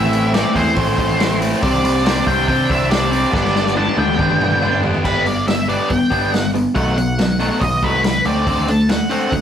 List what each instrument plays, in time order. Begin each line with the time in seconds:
Already playing: picked electric bass A1, overdriven electric guitar A2 E3 A3 C4 E4, lead electric guitar E5
0.13 open hi-hat
0.33 overdriven electric guitar A2 E3 A3 C4 E4, lead electric guitar D5, snare, open hi-hat
0.55 picked electric bass E2, overdriven electric guitar A2 E3 A3 C4 E4, lead electric guitar C5, kick, open hi-hat
0.76 picked electric bass A1, overdriven electric guitar A2 E3 A3 C4 E4, kick, open hi-hat
0.98 picked electric bass A1, kick, open hi-hat
1.19 overdriven electric guitar A2 E3 A3 C4 E4, snare, open hi-hat
1.40 overdriven electric guitar A2 E3 A3 C4 E4, open hi-hat
1.62 picked electric bass C2, overdriven electric guitar C3 G3 C4 D4, lead electric guitar D5, kick, open hi-hat
1.84 picked electric bass C2, open hi-hat
2.05 overdriven electric guitar C3 G3 C4 D4, snare, open hi-hat
2.26 picked electric bass C2, overdriven electric guitar C3 G3 C4 D4, lead electric guitar G5, kick, open hi-hat
2.48 overdriven electric guitar C3 G3 C4 D4, picked electric bass C3, lead electric guitar G5, kick, open hi-hat
2.69 picked electric bass C2, lead electric guitar E5, kick, open hi-hat
2.91 overdriven electric guitar C3 G3 C4 D4, lead electric guitar D5, snare, open hi-hat
3.11 overdriven electric guitar C3 G3 C4 D4, open hi-hat
3.32 picked electric bass G1, overdriven electric guitar G2 D3 G3 B3 D4, lead electric guitar D5, kick, snare
3.45 snare
3.56 snare
3.66 snare
3.75 overdriven electric guitar G2 D3 G3 B3 D4, lead electric guitar A5, high tom
3.87 high tom
3.97 picked electric bass D2, overdriven electric guitar G2 D3 G3 B3 D4, lead electric guitar G5, high tom
4.08 mid tom
4.18 picked electric bass G1, overdriven electric guitar G2 D3 G3 B3 D4, kick, mid tom
4.30 mid tom
4.40 picked electric bass G1, mid tom
4.52 mid tom
4.61 overdriven electric guitar G2 D3 G3 B3 D4, mid tom
4.73 floor tom
4.83 overdriven electric guitar G2 D3 G3 B3 D4, floor tom
4.94 floor tom
5.04 picked electric bass G1, overdriven electric guitar G3 B3 D4, lead electric guitar B4, kick, crash
5.26 overdriven electric guitar G3 B3, lead electric guitar D5, open hi-hat
5.48 overdriven electric guitar G3 B3, lead electric guitar E5, snare, open hi-hat
5.68 overdriven electric guitar G3 B3 D4, lead electric guitar D5, open hi-hat
5.89 picked electric bass G1, overdriven electric guitar G3 B3, lead electric guitar G5, kick, open hi-hat
6.10 picked electric bass G1, overdriven electric guitar G3 B3 D4, kick, open hi-hat
6.32 overdriven electric guitar G3 B3, lead electric guitar F#5, snare, open hi-hat
6.54 overdriven electric guitar G3 B3, open hi-hat
6.75 picked electric bass B1, overdriven electric guitar B2 F#3 A3, lead electric guitar F#5, kick, open hi-hat
6.98 overdriven electric guitar B2 F#3, lead electric guitar F#5, open hi-hat
7.19 overdriven electric guitar B2 F#3, snare, open hi-hat
7.40 overdriven electric guitar B2 F#3 A3, open hi-hat
7.61 picked electric bass B1, overdriven electric guitar B2 F#3, lead electric guitar D#5, kick, open hi-hat
7.82 picked electric bass C2, overdriven electric guitar B2 F#3 A3, lead electric guitar B4, kick, open hi-hat
8.04 overdriven electric guitar B2 F#3, lead electric guitar B4, snare, open hi-hat
8.25 picked electric bass D2, overdriven electric guitar D3 A3 C4, lead electric guitar D5, open hi-hat
8.47 overdriven electric guitar D3 A3 C4, kick, open hi-hat
8.68 overdriven electric guitar D3 A3, lead electric guitar A5, open hi-hat
8.89 overdriven electric guitar D3 A3, lead electric guitar F#5, snare, open hi-hat
9.10 overdriven electric guitar D3 A3 C4, lead electric guitar F#5, open hi-hat
9.32 picked electric bass D2, overdriven electric guitar D3 A3, lead electric guitar F#5, kick, open hi-hat